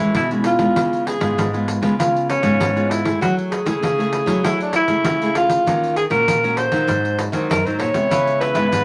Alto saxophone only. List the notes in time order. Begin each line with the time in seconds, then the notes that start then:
Already playing: E4
0.16 E4
0.46 F4
1.07 G#4
2.00 F4
2.30 C#4
2.90 E4
3.22 F#4
3.51 G#4
4.45 E4
4.62 D4
4.75 E4
5.37 F4
5.97 G#4
6.11 A#4
6.57 C5
7.51 A#4
7.66 C5
7.80 C#5
8.41 B4